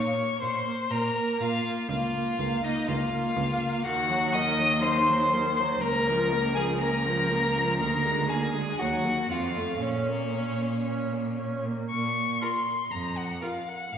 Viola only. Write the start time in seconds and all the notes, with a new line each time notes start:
Already playing: A#3
0.16 A#3
0.41 A#3
0.66 A#3
0.92 A#3
1.16 A#3
1.40 A#3
1.65 A#3
1.90 A#3
2.15 A#3
2.39 A#3
2.64 A#3
2.88 A#3
3.13 A#3
3.37 A#3
3.62 A#3
3.86 D#3
4.10 F#3
4.34 D#3
4.59 F#3
4.84 D#3
5.09 F#3
5.33 D#3
5.58 F#3
5.82 A#3
6.07 F3
6.32 A#3
6.56 F3
6.81 A#3
7.06 F3
7.31 A#3
7.56 F3
7.81 A#3
8.05 G#3
8.30 A#3
8.55 G#3
8.80 F#3
9.05 A#3
9.31 C4
9.57 A3
9.83 C#4
10.08 A#3
10.34 C#4
10.61 A#3
10.87 C#4
11.13 A#3
11.39 C#4
11.65 A#3
12.41 F4
13.42 F4